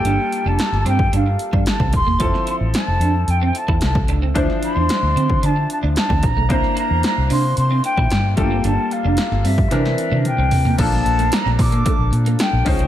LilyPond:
<<
  \new Staff \with { instrumentName = "Flute" } { \time 4/4 \key bes \lydian \tempo 4 = 112 g''8. a''8. g''8 f''4 a''8 c'''8~ | c'''8 c'''8 a''4 g''8 a''8 a''8 r8 | r8 c'''4. a''8 a''8 a''8 bes''8 | bes''8 bes''8 bes''8 c'''8 c'''8 g''4 g''8 |
a''8 f''4 e''4. g''4 | a''4 bes''8 d'''4. g''4 | }
  \new Staff \with { instrumentName = "Grand piano" } { \time 4/4 \key bes \lydian <g bes f' a'>2.~ <g bes f' a'>8 r8 | <f c' e' a'>1 | <e f d' e' c''>1 | <bes d' e' c''>2.~ <bes d' e' c''>8 <g a bes f' a'>8~ |
<g a bes f' a'>2 <e c' d' bes'>2 | <f bes d' a'>2.~ <f bes d' a'>8 <f des' ees' c''>8 | }
  \new Staff \with { instrumentName = "Clean electric guitar" } { \time 4/4 \key bes \lydian d'16 r8 d'16 r8 c'16 r16 d'16 r8 d'16 r16 c'16 r16 bes16 | f'16 r16 e'16 r8. d'16 r8 c'16 r16 e'16 r8 d'16 c'16 | d'16 r8 d'16 r8 c'16 r16 d'16 r8 d'16 r16 c'16 r16 a16 | c'16 r16 e'16 r8. d'16 r8 c'16 r16 e'16 r8 d'16 c'16 |
d'16 r8 d'16 r8 c'16 r16 d'16 r8 d'16 r16 c'16 r16 bes16 | bes16 r8 a16 r16 c'16 r16 bes16 a16 r8 bes16 r8 aes16 c'16 | }
  \new Staff \with { instrumentName = "Fingered electric bass" } { \clef bass \time 4/4 \key bes \lydian g,,16 r8 f,,16 r16 g,,16 g,8 g,8 r16 g,16 r16 c,16 ees,,16 e,,16 | f,,16 r8 a,,16 r16 f,,16 f,8 f,8 r16 e,16 c,8 des,8 | d,16 r8 e,16 r16 d,16 d8 d8 r16 d,16 r16 d,16 bes,,16 b,,16 | c,16 r8 e,16 r16 c,16 c8 c8 r16 bes,16 g,8 g,,8 |
g,,16 r8 f,,16 r16 g,,16 g,8 c8 r16 c16 r16 c,16 c8 | bes,,8 bes,,8 r16 bes,,16 bes,8 r16 bes,,16 bes,8 r16 bes,,16 des,16 c,16 | }
  \new DrumStaff \with { instrumentName = "Drums" } \drummode { \time 4/4 hh8 hh8 <hh sn>16 sn16 hh16 bd16 hh8 hh16 bd16 <hh sn>16 bd16 <hh bd>8 | <hh bd>16 sn16 hh8 <hh sn>8 hh8 hh8 hh16 bd16 <hh sn>16 bd16 hh8 | <hh bd>16 sn16 hh8 <hh sn>8 hh16 bd16 hh8 hh8 <hh sn>16 bd16 <hh bd>8 | <hh bd>16 sn16 hh8 <hh sn>8 hho8 hh8 hh16 bd16 <hh sn>8 <hh bd>8 |
hh8 hh8 <hh sn>16 sn16 hho16 bd16 <hh sn>16 sn16 hh16 tommh16 <hh toml>8 <hho tomfh>16 tomfh16 | <cymc hh bd>16 <hh sn>16 hh16 hh16 <hh sn>16 sn16 <hho bd>16 hh16 <hh bd>8 hh16 hh16 <hh sn>8 <hho bd>16 hh16 | }
>>